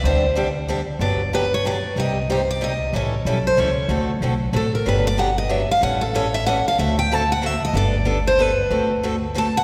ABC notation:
X:1
M:3/4
L:1/8
Q:"Swing" 1/4=187
K:G
V:1 name="Steel-string acoustic guitar"
c2 z4 | d2 B ^c d2 | _e2 c d e2 | ^c2 A =c ^c2 |
z4 A _B | B d f _e =e =f | f A ^c e f =f | e g a f e _e |
d3 c B2- | B2 z2 a f |]
V:2 name="Steel-string acoustic guitar"
[D,G,CDG] z [D,G,CDG] z [D,G,CDG] z | [D,F,B,DG] z [D,F,B,DG] z [D,F,B,DG] z | [C,G,C_EG] z [C,G,CEG] z [C,G,CEG] z | [E,G,^CEA] z [E,G,CEA] z [E,G,CEA] z |
[D,A,CFA] z [D,A,CFA] z [D,A,CFA] z | [D,F,B,DG] z [D,F,B,DG] z [D,F,B,DG] z | [E,G,^CEA] z [E,G,CEA] z [E,G,CEA] z | [D,A,CFA] z [D,A,CFA] z [D,A,CFA] z |
[G,B,DA] z [G,B,DA] z [G,B,DA] z | [D,A,CFA] z [D,A,CFA] z [D,A,CFA] z |]
V:3 name="Upright bass" clef=bass
D,,6 | G,,,6 | C,,6 | A,,,2 B,,,2 ^C,,2 |
D,,2 B,,,2 A,,,2 | G,,,6 | A,,,6 | D,,6 |
G,,,6 | D,,6 |]